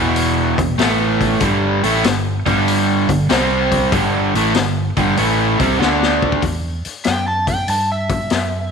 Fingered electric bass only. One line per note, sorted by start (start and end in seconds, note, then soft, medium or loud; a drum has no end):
0.00 0.54 E1 medium
0.58 0.76 E1 medium
0.77 1.36 A1 medium
1.41 1.80 G1 loud
1.84 2.03 A1 loud
2.04 2.43 G1 medium
2.47 3.05 G1 medium
3.09 3.28 G1 medium
3.30 3.88 C2 loud
3.92 4.31 G1 loud
4.35 4.53 A1 medium
4.55 4.94 G1 medium
4.97 5.16 G1 medium
5.18 5.57 A1 medium
5.60 5.78 C2 medium
5.81 6.39 D2 medium
6.43 6.82 E2 medium
6.86 muted fingered electric bass stroke soft
7.07 7.67 F#2 medium
7.68 8.29 G2 medium
8.32 8.71 F#2 medium